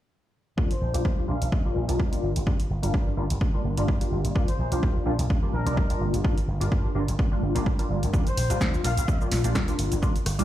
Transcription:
0.57 slap bass D#2, analog polysynth G3 A#3 D4 F4, kick
0.71 trumpet section C5, closed hi-hat
0.81 slap bass A#1
0.94 slap bass A#1, analog polysynth G3 A#3 D4 F4, closed hi-hat
1.05 kick
1.18 maracas
1.28 slap bass A#1, analog polysynth G3 A#3 D4 F4, trumpet section F5
1.42 slap bass A#1, closed hi-hat, maracas
1.52 kick
1.64 analog polysynth G3 A#3 D4 F4, maracas
1.76 slap bass A#1
1.88 slap bass A#1, analog polysynth G3 A#3 D4 F4, closed hi-hat, maracas
2.00 slap bass D#2, kick
2.12 analog polysynth G3 A#3 D4 F4, closed hi-hat
2.23 slap bass G1
2.36 slap bass G1, closed hi-hat, maracas
2.46 slap bass G2, analog polysynth G3 A#3 D4 F4, kick
2.59 closed hi-hat, maracas
2.70 slap bass G1
2.82 slap bass G1, analog polysynth G3 A#3 D4 F4, closed hi-hat, maracas
2.94 slap bass G2, kick
3.08 maracas
3.17 slap bass G1, analog polysynth G3 A#3 D4 F4
3.30 slap bass G1, closed hi-hat, maracas
3.41 slap bass G2, kick
3.53 analog polysynth G3 A#3 D4 F4, maracas
3.64 slap bass G1
3.77 slap bass G1, analog polysynth G3 A#3 D4 F4, closed hi-hat, maracas
3.88 slap bass G2, kick
4.01 analog polysynth G3 A#3 D4 F4, closed hi-hat, maracas
4.12 slap bass G1
4.25 slap bass G1, closed hi-hat, maracas
4.35 analog polysynth G3 A#3 D4 F4, kick
4.48 trumpet section C5, closed hi-hat
4.59 slap bass A#1
4.71 slap bass A#1, analog polysynth G3 A#3 D4 F4, closed hi-hat, maracas
4.83 slap bass D#2, kick
4.95 maracas
5.06 slap bass A#1, analog polysynth G3 A#3 D4 F4
5.19 slap bass A#1, closed hi-hat, maracas
5.30 kick
5.42 analog polysynth G3 A#3 D4 F4, maracas
5.53 slap bass A#1, trumpet section A#4
5.66 slap bass A#1, analog polysynth G3 A#3 D4 F4, closed hi-hat, maracas
5.77 slap bass D#2, kick
5.90 analog polysynth G3 A#3 D4 F4, closed hi-hat
6.01 slap bass G1
6.14 slap bass G1, closed hi-hat, maracas
6.24 analog polysynth G3 A#3 D4 F4, kick
6.38 closed hi-hat, maracas
6.48 slap bass G1
6.60 slap bass G1, analog polysynth G3 A#3 D4 F4, closed hi-hat, maracas
6.72 slap bass G2, kick
6.85 maracas
6.95 slap bass G1, analog polysynth G3 A#3 D4 F4
7.08 slap bass G1, closed hi-hat, maracas
7.19 slap bass G2, kick
7.31 analog polysynth G3 A#3 D4 F4, maracas
7.43 slap bass G1
7.55 slap bass G1, analog polysynth G3 A#3 D4 F4, closed hi-hat, maracas
7.66 slap bass G2, kick
7.79 analog polysynth G3 A#3 D4 F4, closed hi-hat
7.90 slap bass G1
8.03 slap bass G1, closed hi-hat, maracas
8.13 slap bass D#2, analog polysynth G3 A#3 D4 F4, kick, cabasa
8.26 trumpet section C5, closed hi-hat, cabasa, maracas
8.37 slap bass A#1, open hi-hat
8.50 slap bass A#1, analog polysynth G3 A#3 D4 F4, closed hi-hat, cabasa, maracas
8.61 kick, snare, cabasa
8.74 cabasa
8.84 slap bass A#1, analog polysynth G3 A#3 D4 F4, trumpet section F5, open hi-hat
8.97 slap bass A#1, closed hi-hat, cabasa, maracas
9.08 slap bass D#2, kick, cabasa
9.21 analog polysynth G3 A#3 D4 F4, cabasa, maracas
9.32 slap bass A#1, snare, open hi-hat
9.44 slap bass A#1, analog polysynth G3 A#3 D4 F4, closed hi-hat, cabasa, maracas
9.55 slap bass D#2, kick, cross-stick, snare, cabasa
9.68 analog polysynth G3 A#3 D4 F4, closed hi-hat, cabasa, maracas
9.79 slap bass G1, open hi-hat
9.92 slap bass G1, closed hi-hat, cabasa, maracas
10.02 slap bass G2, analog polysynth G3 A#3 D4 F4, kick, cabasa
10.16 closed hi-hat, cabasa, maracas
10.26 slap bass G1, cross-stick, open hi-hat
10.39 slap bass G1, analog polysynth G3 A#3 D4 F4, closed hi-hat, cabasa, maracas

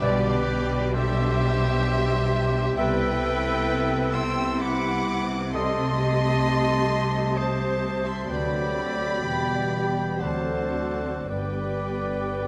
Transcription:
Already playing: harp G3 D4 B4, viola section D4
0.01 double bass section B1, harp B2, cello section B2, trombone section B2 G3, viola section G3, french horn section B3 G4, flute G4, violin section G4 D5, oboe B4, clarinet B4, trumpet D5
0.33 harp B3
0.64 harp G3
0.95 harp D4, violin section G4 E5, flute G4, clarinet A4, oboe C5
1.25 harp B4
1.41 clarinet G4
1.55 harp D4
1.86 harp B4
2.16 harp G3
2.77 double bass section C2, harp C3, cello section C3, trombone section C3 G3, french horn section B3 G4, viola section B3 E4, clarinet A4, violin section B4 G5, flute B4, oboe E5, trumpet E5
3.08 harp C4
3.39 harp G3
3.69 harp E4
4.00 harp B4
4.14 flute G5, violin section G5 E6, oboe C6
4.31 harp E4
4.61 clarinet G4, harp B4, flute F#5, violin section F#5 D6, oboe B5
4.93 harp G3
5.23 harp C4
5.53 harp C3, trombone section C3 G3, viola section A3 G4, french horn section A3 A4, clarinet A4, flute D#5, violin section D#5 C6, trumpet D#5, oboe A5
5.84 harp C4
6.00 clarinet G4
6.14 harp G3
6.45 harp D#4
7.07 harp D#4
7.37 flute C5, violin section C5 A5, clarinet C5, oboe D#5
7.69 harp G3
7.99 harp C4
8.06 violin section E5 C6, flute E5, oboe A5
8.29 double bass section D2, cello section D2, trombone section C3 F#3, harp D3, french horn section A3 A4, viola section C4 F#4, clarinet B4, violin section D5 B5, trumpet D5, flute D5, oboe G5
8.61 harp C4
8.77 clarinet A4
8.92 harp C4 A4
9.23 double bass section E1, cello section E2, trombone section B2 G3, harp E3, viola section B3 G4, french horn section B3 G4, clarinet G4, trumpet G5
9.56 harp B3
9.73 clarinet G4
9.88 harp B3
10.21 cello section D2, double bass section D2, trombone section D3 F#3, harp D3, french horn section C4 A4, viola section C4 F#4, clarinet A4, flute C5, violin section C5 A5, trumpet D5, oboe F#5
10.57 harp C4
10.93 harp D4
11.29 double bass section G1, cello section G2, harp G2, trombone section D3 G3, french horn section B3 B4, viola section B3 G4, flute B4, violin section B4 G5, clarinet B4, oboe D5, trumpet D5
11.66 harp D3
12.02 harp G3
12.38 harp B3

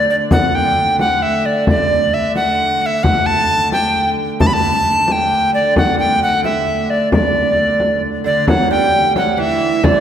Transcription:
Already playing: hurdy-gurdy D3 A3
0.10 recorder D5
0.31 recorder F#5, frame drum
0.55 recorder G5
0.99 recorder F#5, frame drum
1.22 recorder E5, frame drum
1.46 recorder D5
1.67 recorder D5, frame drum
1.90 frame drum
2.14 recorder E5
2.36 recorder F#5, frame drum
2.81 recorder F#5, frame drum
2.86 recorder E5
3.03 hurdy-gurdy D3 A3, recorder F#5, frame drum
3.26 recorder A5
3.72 recorder G5, frame drum
3.95 frame drum
4.40 recorder A5, frame drum
4.47 recorder B5
4.53 recorder A5
5.08 recorder A5, frame drum
5.12 recorder G5
5.31 frame drum
5.54 recorder D5
5.76 recorder F#5, frame drum
5.99 recorder G5
6.23 recorder F#5
6.44 recorder E5, frame drum
6.67 frame drum
6.90 recorder D5
7.12 recorder D5, frame drum
7.58 frame drum
7.80 frame drum
8.03 frame drum
8.24 lute D3, recorder D5, frame drum
8.47 hurdy-gurdy D3 A3, lute F#3, recorder F#5, frame drum
8.71 lute G3, recorder G5
9.16 lute F#3, recorder F#5, frame drum
9.37 lute E3, recorder E5, frame drum
9.83 lute D3, recorder D5, frame drum

